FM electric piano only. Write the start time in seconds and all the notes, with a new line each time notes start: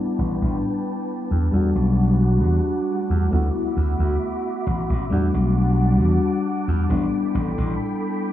Already playing: G3 B3 D4 E4
1.51 G3 A3 D4 F#4
3.31 A3 B3 E4 F#4
5.10 G3 A3 D4 F#4
6.89 G3 B3 D4 E4